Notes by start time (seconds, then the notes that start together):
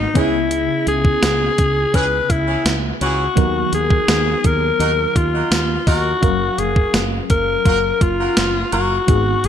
Already playing: B3 D#4 F#4 G#4
0.14 C#2 C#3 E3 B3 C#4 E4 G#4, kick, closed hi-hat
0.51 closed hi-hat
0.87 C#2 G#4, closed hi-hat
1.05 kick
1.23 C#2, snare, closed hi-hat, tambourine
1.58 C#2, kick, closed hi-hat
1.94 C#2 E3 C#4 G#4 B4, kick, closed hi-hat
2.30 C#2 E4, kick, closed hi-hat
2.47 E3 C#4 G#4
2.65 C#2, snare, closed hi-hat, tambourine
3.01 C#2 E3 C#4 F#4 G#4, closed hi-hat
3.36 D#2 D#3 F#3 B3 D#4 A#4, kick, closed hi-hat
3.72 D#2 G#4, closed hi-hat
3.90 kick
4.08 D#2, snare, closed hi-hat, tambourine
4.44 D#2 A#4, kick, closed hi-hat
4.79 D#2 F#3 D#4 A#4, closed hi-hat
5.16 D#2 F4, kick, closed hi-hat
5.33 F#3 D#4 A#4
5.51 D#2, snare, closed hi-hat, tambourine
5.87 D#2 F#3 D#4 F#4 A#4, kick, open hi-hat
6.21 F#1 F#3 C#4 A#4 F5, kick, closed hi-hat
6.58 F#1 G#4, closed hi-hat
6.76 kick
6.94 F#1, snare, closed hi-hat, tambourine
7.30 F#1 A#4, kick, closed hi-hat
7.65 F#1 F#3 F4 A#4, kick, closed hi-hat
8.01 F#1 F4, kick, closed hi-hat
8.19 F#3 F4 A#4
8.37 F#1, snare, closed hi-hat, tambourine
8.72 F#1 F#3 F#4 A#4 F5, closed hi-hat
9.07 G#1 G#2 B3 D#4 F#4 G#4, kick, closed hi-hat
9.44 G#1, closed hi-hat